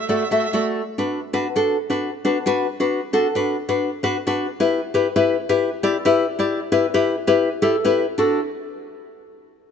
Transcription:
0.00 erhu E5
0.08 nylon-string guitar A3 F#4 A4 D5, erhu E5
0.16 erhu E5
0.24 erhu E5
0.31 nylon-string guitar A3 F#4 A4 E5, erhu E5
0.39 erhu E5
0.45 erhu E5
0.53 nylon-string guitar A3 F#4 A4 D5, erhu E5
0.98 nylon-string guitar D4 F#4 B4
1.33 nylon-string guitar D4 F#4 B4
1.56 nylon-string guitar D4 F#4 A4
1.90 nylon-string guitar D4 F#4 B4
2.25 nylon-string guitar D4 F#4 B4
2.46 nylon-string guitar D4 F#4 B4
2.80 nylon-string guitar D4 F#4 B4
3.13 nylon-string guitar D4 F#4 A4
3.35 nylon-string guitar D4 F#4 B4
3.69 nylon-string guitar D4 F#4 B4
4.03 nylon-string guitar D4 F#4 B4
4.27 nylon-string guitar D4 F#4 B4
4.60 nylon-string guitar E4 G4 B4
4.94 nylon-string guitar E4 G4 B4
5.16 nylon-string guitar E4 G4 B4
5.49 nylon-string guitar E4 G4 B4
5.83 nylon-string guitar E4 G4 D5
6.05 nylon-string guitar E4 G4 B4
6.39 nylon-string guitar E4 G4 D5
6.72 nylon-string guitar E4 G4 B4
6.94 nylon-string guitar E4 G4 B4
7.27 nylon-string guitar E4 G4 B4
7.62 nylon-string guitar E4 G4 A4
7.85 nylon-string guitar E4 G4 B4
8.18 nylon-string guitar D4 F#4 A4

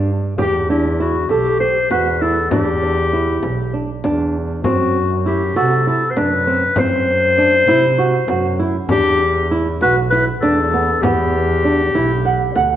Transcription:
Already playing: double bass G2
0.38 double bass E2, nylon-string guitar G4, clarinet G4, frame drum
0.70 nylon-string guitar D4, clarinet E4
1.00 nylon-string guitar E4, clarinet F#4
1.29 double bass B1, clarinet G4, nylon-string guitar A4, frame drum
1.60 nylon-string guitar G4, clarinet C5, frame drum
1.91 double bass E2, nylon-string guitar F#4, clarinet B4, frame drum
2.21 nylon-string guitar E4, clarinet A4
2.50 double bass E2, nylon-string guitar D4, clarinet G4, frame drum
2.82 nylon-string guitar D4
3.13 nylon-string guitar E4
3.43 double bass B1, frame drum
3.74 nylon-string guitar D4
4.04 double bass E2, nylon-string guitar D4, frame drum
4.64 double bass F#2, nylon-string guitar C4, clarinet F#4, frame drum
5.26 nylon-string guitar E4, clarinet G4
5.56 double bass C3, nylon-string guitar F#4, clarinet A4, frame drum
5.86 nylon-string guitar E4, clarinet A4, frame drum
6.11 clarinet C5
6.17 double bass F#2, nylon-string guitar D4, clarinet B4, frame drum
6.47 nylon-string guitar C4, frame drum
6.76 double bass F#2, nylon-string guitar C4, clarinet C5, frame drum
7.38 nylon-string guitar D4
7.68 double bass C3, nylon-string guitar E4, frame drum
7.98 nylon-string guitar F#4, frame drum
8.28 double bass F#2, nylon-string guitar F#4, frame drum
8.59 nylon-string guitar E4, frame drum
8.89 double bass E2, nylon-string guitar D4, clarinet G4, frame drum
9.51 nylon-string guitar E4
9.80 double bass B1, nylon-string guitar F#4, clarinet B4, frame drum
10.11 nylon-string guitar E4, clarinet B4
10.41 double bass E2, nylon-string guitar D4, clarinet A4, frame drum
10.73 nylon-string guitar B3, frame drum
11.01 double bass E2, nylon-string guitar B3, clarinet G4, frame drum
11.65 nylon-string guitar D4
11.93 double bass B1, nylon-string guitar E4, frame drum
12.25 nylon-string guitar F#5
12.55 double bass D2, nylon-string guitar F#5, frame drum

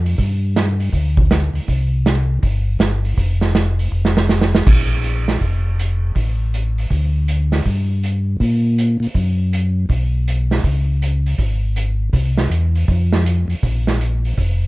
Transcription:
Already playing: tonewheel organ F2
0.06 open hi-hat
0.18 tonewheel organ G2, kick, open hi-hat
0.56 snare, closed hi-hat
0.80 open hi-hat
0.93 tonewheel organ D2, kick, open hi-hat
1.17 kick
1.31 snare, closed hi-hat
1.54 tonewheel organ D2, open hi-hat
1.68 tonewheel organ C2, kick, open hi-hat
2.06 snare, closed hi-hat
2.43 tonewheel organ G1, kick, open hi-hat
2.79 tonewheel organ G1, snare, closed hi-hat
3.05 open hi-hat
3.17 tonewheel organ F1, kick, open hi-hat
3.41 snare
3.55 snare, closed hi-hat
3.79 open hi-hat
3.92 tonewheel organ F1
4.05 snare
4.17 snare
4.29 snare
4.41 snare
4.55 snare
4.67 tonewheel organ A#1, kick, crash
5.04 closed hi-hat
5.28 snare
5.41 tonewheel organ F1, kick, open hi-hat
5.79 closed hi-hat
6.15 tonewheel organ A1, kick, open hi-hat
6.54 closed hi-hat
6.78 open hi-hat
6.90 tonewheel organ D2, kick, open hi-hat
7.28 closed hi-hat
7.52 snare, open hi-hat
7.66 tonewheel organ G2, kick, open hi-hat
8.04 closed hi-hat
8.40 tonewheel organ A#2, kick, open hi-hat
8.78 closed hi-hat
9.00 tonewheel organ A#2, open hi-hat
9.14 tonewheel organ F#2, kick, open hi-hat
9.53 closed hi-hat
9.89 tonewheel organ B1, kick, open hi-hat
10.28 closed hi-hat
10.51 snare
10.63 tonewheel organ C#2, kick, open hi-hat
11.02 closed hi-hat
11.26 open hi-hat
11.38 tonewheel organ G#1, kick, open hi-hat
11.76 closed hi-hat
12.13 tonewheel organ C2, kick, open hi-hat
12.37 snare
12.50 tonewheel organ E2, closed hi-hat
12.75 open hi-hat
12.88 tonewheel organ F2, kick, open hi-hat
13.13 snare
13.26 closed hi-hat
13.48 tonewheel organ F2, open hi-hat
13.63 tonewheel organ A#1, kick, open hi-hat
13.87 snare
14.01 closed hi-hat
14.25 open hi-hat
14.38 tonewheel organ F1, kick, open hi-hat

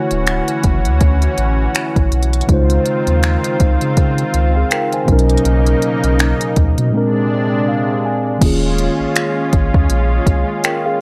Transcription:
Already playing: tine electric piano D3 A3 E4 F#4 C#5, analog synth pad E3 C#4 F#4
0.11 sub bass D1, closed hi-hat
0.27 finger snap, closed hi-hat
0.48 closed hi-hat
0.64 sub bass F#1, kick, closed hi-hat
0.85 sub bass D2, closed hi-hat
1.01 kick, closed hi-hat
1.22 closed hi-hat
1.38 sub bass A1, closed hi-hat
1.75 finger snap, closed hi-hat
1.96 sub bass A1, kick, closed hi-hat
2.12 sub bass B1, closed hi-hat
2.23 closed hi-hat
2.33 closed hi-hat
2.41 closed hi-hat
2.47 sub bass C#2, tine electric piano C#3 G#3 D#4, analog synth pad D#3 C4 F4, kick, closed hi-hat
2.52 tine electric piano F4 C5
2.70 closed hi-hat
2.86 closed hi-hat
3.07 sub bass D#2, closed hi-hat
3.23 finger snap, closed hi-hat
3.44 closed hi-hat
3.60 sub bass C#2, kick, closed hi-hat
3.81 sub bass C#3, closed hi-hat
3.97 kick, closed hi-hat
4.18 closed hi-hat
4.34 sub bass C#2, closed hi-hat
4.56 tine electric piano G#4 F5
4.71 tine electric piano A#4 G5, finger snap, closed hi-hat
4.93 tine electric piano C5 G#5, closed hi-hat
5.05 sub bass B1, tine electric piano B2 F#3 C#4, analog synth pad C#3 A#3 D#4, kick, closed hi-hat
5.11 tine electric piano D#4 A#4
5.19 closed hi-hat
5.29 closed hi-hat
5.37 closed hi-hat
5.45 sub bass B1, closed hi-hat
5.66 closed hi-hat
5.82 closed hi-hat
6.04 sub bass B1, closed hi-hat
6.19 finger snap, closed hi-hat
6.41 closed hi-hat
6.56 sub bass D#2, kick, closed hi-hat
6.78 sub bass B2, closed hi-hat
6.90 tine electric piano A#2 G#3 C4, analog synth pad C3 G#3 D4
6.96 tine electric piano D4 A#4
7.68 tine electric piano F5
8.05 tine electric piano G#5
8.39 sub bass D#1, tine electric piano D#3 A#3 C#4, analog synth pad G#3 C#4 F4, kick, closed hi-hat, crash
8.44 tine electric piano F4 G#4
8.78 closed hi-hat
9.00 sub bass G#1
9.16 finger snap, closed hi-hat
9.53 sub bass G#1, kick, closed hi-hat
9.74 sub bass D#2, kick
9.90 sub bass A#1, closed hi-hat
10.27 sub bass C2, kick, closed hi-hat
10.64 tine electric piano A#4 G5, finger snap, closed hi-hat
10.86 tine electric piano G#4 F5

